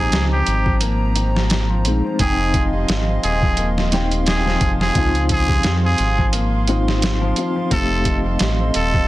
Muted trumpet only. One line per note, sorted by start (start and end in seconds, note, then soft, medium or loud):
0.00 0.26 G#4 loud
0.32 0.77 G4 medium
2.20 2.68 G#4 loud
3.24 3.71 G#4 medium
4.27 4.75 G#4 medium
4.81 5.26 G#4 medium
5.32 5.79 G#4 loud
5.85 6.29 G#4 medium
7.73 8.20 A4 loud
8.76 9.08 A4 loud